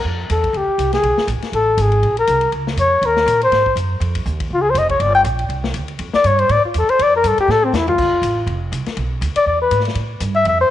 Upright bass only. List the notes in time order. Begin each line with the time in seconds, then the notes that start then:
0.04 F2
0.30 E2
0.53 D2
0.67 muted upright bass stroke
0.78 C2
1.03 B1
1.17 muted upright bass stroke
1.27 A#1
1.41 muted upright bass stroke
1.52 A1
1.77 G#1
2.02 A#1
2.28 C2
2.52 C#2
2.76 F2
3.02 D#2
3.26 A#2
3.51 G#2
3.76 F#2
4.00 F2
4.26 D#2
4.50 C#2
4.74 F1
5.00 G1
5.24 A#1
5.49 C2
5.74 D2
5.99 F2
6.14 muted upright bass stroke
6.24 G2
6.49 A2
6.64 muted upright bass stroke
6.74 E2
6.89 muted upright bass stroke
6.99 F2
7.24 G2
7.38 muted upright bass stroke
7.48 A2
7.73 E2
7.98 D2
8.12 muted upright bass stroke
8.22 A1
8.46 F1
8.72 C2
8.87 muted upright bass stroke
8.97 B1
9.21 D2
9.35 muted upright bass stroke
9.46 E2
9.71 G#2
9.95 A2
10.20 G2
10.45 F2